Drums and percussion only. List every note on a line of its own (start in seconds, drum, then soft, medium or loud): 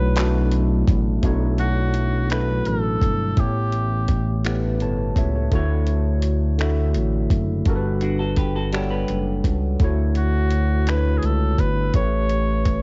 0.16 clap loud
0.16 closed hi-hat medium
0.52 closed hi-hat soft
0.88 kick loud
0.88 closed hi-hat medium
1.23 kick medium
1.23 closed hi-hat medium
1.58 closed hi-hat soft
1.94 closed hi-hat medium
2.30 finger snap medium
2.30 closed hi-hat medium
2.65 closed hi-hat soft
3.02 kick medium
3.02 closed hi-hat medium
3.37 kick medium
3.37 closed hi-hat medium
3.72 closed hi-hat soft
4.08 kick medium
4.08 closed hi-hat medium
4.45 finger snap loud
4.45 closed hi-hat medium
4.80 closed hi-hat soft
5.16 kick medium
5.16 closed hi-hat medium
5.52 kick medium
5.52 closed hi-hat medium
5.87 closed hi-hat soft
6.22 closed hi-hat medium
6.59 finger snap medium
6.59 closed hi-hat medium
6.94 closed hi-hat soft
7.30 kick medium
7.30 closed hi-hat medium
7.65 kick medium
7.65 closed hi-hat medium
8.01 closed hi-hat soft
8.36 kick medium
8.36 closed hi-hat medium
8.73 finger snap loud
8.73 closed hi-hat medium
9.08 closed hi-hat soft
9.44 kick medium
9.44 closed hi-hat medium
9.80 kick medium
9.80 closed hi-hat medium
10.15 closed hi-hat soft
10.51 closed hi-hat medium
10.87 finger snap medium
10.87 closed hi-hat medium
11.23 closed hi-hat soft
11.58 kick medium
11.58 closed hi-hat medium
11.94 kick medium
11.94 closed hi-hat medium
12.29 closed hi-hat soft
12.65 kick medium
12.65 closed hi-hat medium